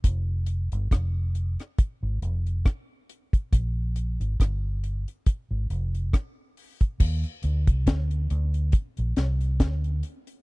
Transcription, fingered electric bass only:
X:1
M:4/4
L:1/16
Q:"Swing 16ths" 1/4=69
K:Bbmix
V:1 name="Fingered electric bass" clef=bass
F,,,3 G,,, F,,,3 z2 A,,, F,,,2 z4 | B,,,3 A,,, G,,,3 z2 A,,, F,,,2 z4 | E,, z D,, C,, D,,2 D,,2 z B,,, C,,2 D,,2 z2 |]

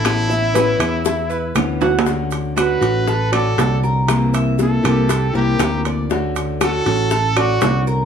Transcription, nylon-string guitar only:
X:1
M:4/4
L:1/8
Q:1/4=119
K:D
V:1 name="Nylon-string guitar"
[E,B,CE] [B,CE] [E,B,CE] [B,CE] z2 [E,B,CE] [B,CE] | [D,A,CF]2 [D,A,CF] [A,CF] z [A,CF] [D,A,CF]2 | [=C,E,_B,=CE]2 [E,B,CE] [E,B,CE] z [E,B,CE] [E,B,CE]2 | [D,A,CF]2 [D,A,CF] [A,CF] z [A,CF] [D,A,CF]2 |]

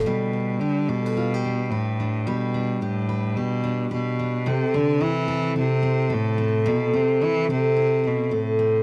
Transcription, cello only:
X:1
M:4/4
L:1/16
Q:"Swing 16ths" 1/4=109
K:G
V:1 name="Cello" clef=bass
B,,4 D,2 B,,6 A,,4 | B,,4 A,,4 B,,4 B,,4 | C,2 D,2 E,4 C,4 A,,4 | B,,2 C,2 E,2 C,4 B,,3/2 B,,/2 A,,4 |]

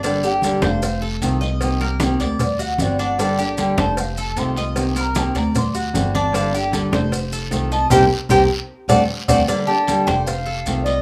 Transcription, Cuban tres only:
X:1
M:4/4
L:1/8
Q:1/4=152
K:Gm
V:1 name="Cuban tres"
D G2 c2 A2 e- | e B2 d2 ^F2 D | D G2 c2 A2 e- | e B2 d2 ^F2 D |
D G2 c2 A2 e | [GBc] z [GBc] z2 [Acd] z [Acd] | D G2 c2 A2 e |]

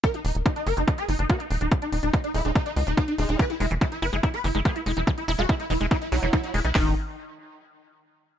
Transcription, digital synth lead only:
X:1
M:4/4
L:1/16
Q:1/4=143
K:Ebphr
V:1 name="Digital synth lead"
B E E z E E B E E A E E G E E E | z E E E E E F E E E E E E E E E | =B =E E z E E B E E B E E A E E E | z =E E G E E E E E E E E E E E E |
E2 z12 z2 |]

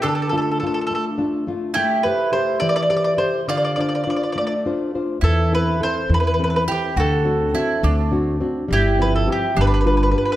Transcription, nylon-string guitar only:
X:1
M:6/8
L:1/8
Q:3/8=69
K:Ddor
V:1 name="Nylon-string guitar"
D, [A,DF] [A,DF] A, [A,DF] [A,DF] | A, [GAc] [GAc] E, [GAc] [GAc] | D, [DFc] [DFc] A, [DFc] [DFc] | E, [CEA] [CEA] E, [CEA] [CEA] |
D, [CD^F] [CDF] A, [CDF] [CDF] | G, [F,CG] [CFG] G, [FGB] [FGB] |]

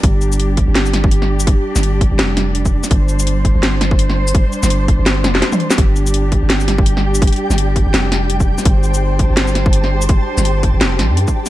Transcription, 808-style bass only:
X:1
M:4/4
L:1/16
Q:"Swing 16ths" 1/4=167
K:Cdor
V:1 name="808-style bass" clef=bass
G,,,6- G,,, G,,,8- G,,,- | G,,, z2 G,,,4 G,,,8- G,,, | G,,,6- G,,, G,,,8- G,,,- | G,,, z2 G,,,4 G,,,3 F,,,2 z4 |
G,,,6- G,,, G,,,8- G,,,- | G,,, z2 G,,,4 G,,, F,,,6- F,,, z | G,,,6- G,,, G,,,8- G,,,- | G,,, z2 G,,,4 G,,, F,,,2 B,,, G,,2 z3 |]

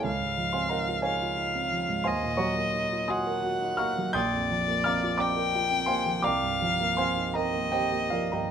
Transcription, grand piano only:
X:1
M:6/8
L:1/16
Q:3/8=58
K:Db
V:1 name="Grand piano"
[Adfa]3 [cfac'] [Begb]2 [Adfa]6 | [K:Bbmix] [cfac']2 [_d_gb_d']4 [eac'e']4 [fbd'f']2 | [gc'e'g']4 [fbd'f']2 [dgbd']4 [cfac']2 | [dgbd']4 [cfac']2 [Begb]2 [Gceg]2 [FBdf] [Begb] |]
V:2 name="Grand piano"
D,, A,, F, C E F E F E C F, A,, | [K:Bbmix] E,, B,, _G, B, E F _G B G E B, G, | B,,, F,, F, B, C F C B F C B, F, | C,, G,, F, B, C E C B, C B, F, G,, |]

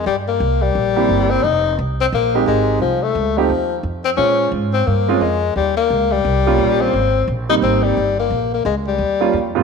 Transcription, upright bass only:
X:1
M:4/4
L:1/8
Q:"Swing" 1/4=175
K:Fm
V:1 name="Upright bass" clef=bass
G,,2 C,,2 B,,,2 G,,,2 | F,,,2 C,,2 B,,,2 A,,,2 | C,,2 D,,2 E,,2 F,,2 | B,,2 A,,2 G,,2 F,,2 |
E,,2 D,,2 C,,2 B,,,2 | A,,,2 B,,,2 A,,,2 G,,,2 | B,,,2 D,,2 E,,2 F,,2 |]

